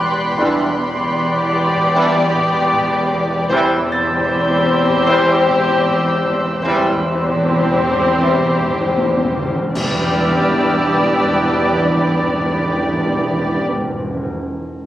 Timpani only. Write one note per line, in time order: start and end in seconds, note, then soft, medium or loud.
3.50 3.57 E2 soft
3.58 3.64 E2 soft
3.65 3.72 E2 soft
3.73 3.79 E2 soft
3.80 3.86 E2 soft
3.87 3.95 E2 soft
3.96 4.01 E2 soft
4.03 4.10 E2 soft
4.12 4.17 E2 soft
4.18 4.23 E2 soft
4.25 4.32 E2 soft
4.33 4.40 E2 soft
4.41 4.47 E2 soft
4.48 4.55 E2 soft
4.56 4.62 E2 soft
4.64 4.71 E2 soft
4.72 4.78 E2 soft
4.79 4.85 E2 soft
4.86 4.93 E2 soft
4.94 5.00 E2 soft
5.02 5.08 E2 soft
5.10 5.15 E2 medium
5.16 5.23 E2 medium
5.24 5.30 E2 medium
5.31 5.38 E2 medium
5.39 5.44 E2 medium
5.45 5.53 E2 medium
5.54 5.60 E2 medium
5.61 5.67 E2 medium
5.69 5.75 E2 medium
5.76 5.82 E2 medium
5.83 5.90 E2 medium
5.91 5.98 E2 medium
6.00 6.07 E2 medium
6.08 6.13 E2 medium
6.14 6.21 E2 medium
6.23 6.29 E2 medium
6.31 6.37 E2 medium
6.38 6.44 E2 medium
6.45 6.51 E2 medium
6.52 6.58 E2 medium
6.60 6.66 E2 medium
6.68 6.73 E2 medium
6.74 6.80 E2 medium
6.81 6.88 E2 medium
6.89 6.95 E2 medium
6.96 7.02 E2 medium
7.03 7.10 E2 medium
7.12 7.18 E2 medium
7.19 7.25 E2 medium
7.27 7.33 E2 medium
7.34 7.40 E2 medium
7.42 7.49 E2 medium
7.50 7.56 E2 medium
7.57 7.63 E2 medium
7.64 7.70 E2 medium
7.71 7.77 E2 medium
7.79 7.85 E2 medium
7.86 7.93 E2 medium
7.94 7.99 E2 medium
8.01 8.08 E2 medium
8.09 8.14 E2 medium
8.15 8.22 E2 medium
8.23 8.30 E2 medium
8.31 8.38 E2 medium
8.39 8.45 E2 medium
8.46 8.53 E2 medium
8.54 8.60 E2 medium
8.61 8.68 E2 medium
8.69 8.74 E2 medium
8.75 8.82 E2 medium
8.83 8.90 E2 medium
8.91 8.97 E2 medium
8.98 9.05 E2 loud
9.06 9.11 E2 loud
9.12 9.20 E2 loud
9.21 9.27 E2 loud
9.28 9.34 E2 loud
9.35 9.41 E2 loud
9.42 9.50 E2 medium
9.51 9.56 E2 loud
9.58 9.64 E2 loud
9.66 9.73 E2 medium
9.76 9.81 E2 medium
9.81 9.88 E2 medium
9.88 9.94 E2 medium
9.95 10.00 E2 medium
10.00 10.07 E2 medium
10.07 10.14 E2 medium
10.14 10.20 E2 medium
10.20 10.26 E2 medium
10.26 10.33 E2 medium
10.33 10.39 E2 medium
10.39 10.45 E2 medium
10.45 10.51 E2 medium
10.52 10.58 E2 medium
10.58 10.65 E2 medium
10.65 10.71 E2 medium
10.71 10.78 E2 medium
10.78 10.84 E2 medium
10.84 10.91 E2 medium
10.91 10.97 E2 medium
10.98 11.04 E2 medium
11.04 11.10 E2 medium
11.10 11.17 E2 medium
11.17 11.23 E2 medium
11.23 11.29 E2 medium
11.29 11.36 E2 medium
11.36 11.42 E2 medium
11.42 11.49 E2 medium
11.49 11.55 E2 medium
11.55 11.61 E2 medium
11.62 11.68 E2 medium
11.68 11.74 E2 medium
11.75 11.81 E2 medium
11.81 11.87 E2 medium
11.88 11.94 E2 medium
11.94 12.00 E2 medium
12.00 12.06 E2 medium
12.07 12.13 E2 medium
12.13 12.20 E2 medium
12.20 12.26 E2 medium
12.26 12.32 E2 medium
12.32 12.38 E2 medium
12.38 12.44 E2 medium
12.44 12.50 E2 medium
12.50 12.56 E2 medium
12.56 12.63 E2 medium
12.63 12.69 E2 medium
12.69 12.76 E2 medium
12.76 12.82 E2 medium
12.82 12.88 E2 medium
12.89 12.95 E2 medium
12.95 13.02 E2 medium
13.02 13.09 E2 medium
13.09 13.15 E2 medium
13.15 13.22 E2 medium
13.22 13.28 E2 medium
13.28 13.35 E2 medium
13.35 13.41 E2 medium
13.41 13.47 E2 medium
13.47 13.53 E2 medium
13.53 13.59 E2 medium
13.59 13.66 E2 medium
13.66 13.72 E2 medium
13.72 13.79 E2 medium
13.79 13.85 E2 medium
13.85 13.91 E2 medium
13.91 13.97 E2 medium
13.98 14.04 E2 medium
14.04 14.11 E2 medium
14.11 14.17 E2 medium
14.17 14.23 E2 medium
14.23 14.30 E2 medium
14.30 14.36 E2 medium